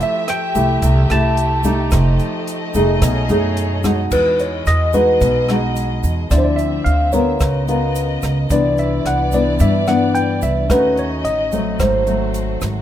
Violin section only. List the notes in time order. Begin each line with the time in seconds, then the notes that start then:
Already playing: A3 G4 E5
1.92 D#5
3.01 G#4 C#5
4.12 G#3 F#4 D#5
6.31 C4 E5
7.41 B3 A#4 D#5
8.51 B3 E4 D5
10.70 C#4 F#4 D#5
11.80 A3 C5